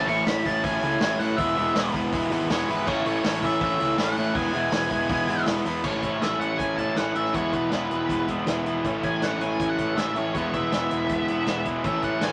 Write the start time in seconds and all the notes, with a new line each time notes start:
0.07 A1 A2 E3 A3 C#4 E4 C#6, open hi-hat
0.26 A1 A2 E3 A3 C#4 E4 B5, snare, open hi-hat, tambourine
0.45 A1 A2 E3 A3 C#4 E4 A5, kick, open hi-hat, tambourine
0.64 A1 A2 E3 A3 C#4 E4 G#5, kick, open hi-hat, tambourine
0.82 C#2 A2 E3 A3 C#4 E4, open hi-hat
1.00 A1 A2 E3 A3 C#4 E4, snare, open hi-hat, tambourine
1.19 A2 E3 A3 C#4 E4 F#5, open hi-hat, tambourine
1.37 E1 E3 G#3 B3 E4 E5, kick, open hi-hat
1.56 E1 E3 G#3 B3 E4, open hi-hat
1.75 E1 E3 G#3 B3 E4, snare, open hi-hat, tambourine
1.93 E1 E3 G#3 B3 E4, kick, open hi-hat, tambourine
2.12 E1 E3 G#3 B3 E4, kick, open hi-hat, tambourine
2.31 G#1 E3 G#3 B3 E4, open hi-hat, tambourine
2.49 E1 E3 G#3 B3 E4 C#5, snare, open hi-hat, tambourine
2.68 G#1 E3 G#3 B3 E4 B4, open hi-hat, tambourine
2.87 A1 A2 E3 A3 C#4 E4 C#5, kick, crash
3.05 A1 A2 E3 A3 C#4 E4 C#5, open hi-hat
3.24 A1 A2 E3 A3 C#4 E4, snare, open hi-hat, tambourine
3.43 A1 A2 E3 A3 C#4 E4 E5, kick, open hi-hat, tambourine
3.61 A1 A2 E3 A3 C#4 E4 E5, kick, open hi-hat, tambourine
3.80 C#2 A2 E3 A3 C#4 E4, open hi-hat, tambourine
3.97 A1 A2 E3 A3 C#4 E4 F#5, snare, open hi-hat, tambourine
4.16 A2 E3 A3 C#4 E4, open hi-hat, tambourine
4.35 E1 E3 G#3 B3 E4 G#5, kick, open hi-hat, tambourine
4.53 E1 E3 G#3 B3 E4, open hi-hat
4.72 E1 E3 G#3 B3 E4, snare, open hi-hat, tambourine
4.91 E1 E3 G#3 B3 E4, kick, open hi-hat, tambourine
5.09 E1 E3 G#3 B3 E4, kick, open hi-hat, tambourine
5.27 G#1 E3 G#3 B3 E4, open hi-hat, tambourine
5.46 E1 E3 G#3 B3 E4, snare, open hi-hat, tambourine
5.56 snare
5.65 E2 E3 G#3 B3 E4, open hi-hat, tambourine
5.84 A1 A2 E3 A3 C#4 E4 C#5, kick, crash
6.03 A1 A3 C#4 E4, kick, closed hi-hat
6.21 A1 A2 E3 A3 C#4 E4 E5, snare, closed hi-hat
6.40 A3 C#4 E4 F#5, closed hi-hat
6.58 A1 G#5, kick, closed hi-hat
6.77 A1 C#4 E4 A5, kick, closed hi-hat
6.81 A3
6.96 A1 A2 E3 A3 C#4 E4 F#5, snare, closed hi-hat
7.15 A1 A3 C#4 E4 E5, closed hi-hat
7.25 snare
7.34 E1 E3 G#3 B3 E4 C#5, kick, closed hi-hat
7.53 E1 G#3 B3 E4 B4, kick, closed hi-hat
7.71 E1 E3 G#3 B3 E4, snare, closed hi-hat
7.90 E1 G#3 B3 E4, closed hi-hat
8.09 E1, kick, closed hi-hat
8.28 E1 G#3 B3 E4, kick, closed hi-hat
8.46 E1 E3 G#3 B3 E4, snare, closed hi-hat
8.65 G#3 B3 E4, closed hi-hat
8.84 A1 A2 E3 A3 C#4 E4, kick, closed hi-hat
9.03 A1 A3 C#4 E4 G#5, kick, closed hi-hat
9.22 A1 A2 E3 A3 C#4 E4 F#5, snare, closed hi-hat
9.41 A3 C#4 E4 G#5, closed hi-hat
9.60 A1, kick, closed hi-hat
9.69 F#5
9.78 A1 A3 C#4 E4, kick, closed hi-hat
9.97 A1 A2 E3 A3 C#4 E4 E5, snare, closed hi-hat
10.16 A1 A3 C#4 E4 C#5, closed hi-hat
10.35 E1 E3 G#3 B3 E4 C#5, kick, closed hi-hat
10.53 E1 G#3 B3 E4 E5, kick, closed hi-hat
10.72 E1 E3 G#3 B3 E4, snare, closed hi-hat
10.91 E1 G#3 B3 E4, closed hi-hat
11.09 E1, kick, closed hi-hat
11.28 E1 G#3 B3 E4, closed hi-hat
11.46 E1 E3 G#3 B3 E4, snare, closed hi-hat
11.65 G#3 B3 E4, kick, closed hi-hat
11.84 A1 A2 E3 A3 C#4 E4 E5, kick, closed hi-hat
12.02 A1 A3 C#4 E4 F#5, kick, closed hi-hat, tambourine
12.21 A1 A2 E3 A3 C#4 E4 G#5, snare, closed hi-hat, tambourine